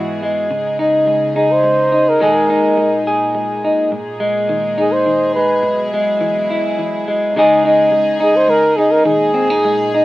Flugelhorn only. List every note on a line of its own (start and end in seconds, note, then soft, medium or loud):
0.00 0.17 F#4 medium
1.36 1.53 G#4 medium
1.51 2.11 C5 medium
2.09 2.22 A#4 medium
2.23 3.04 A#4 medium
4.81 4.94 G#4 medium
4.92 5.34 C5 medium
5.35 5.88 B4 medium
8.23 8.38 G#4 medium
8.37 8.51 C5 medium
8.50 8.78 A#4 medium
8.77 8.93 G#4 medium
8.92 9.05 A#4 medium
9.06 10.05 G#4 medium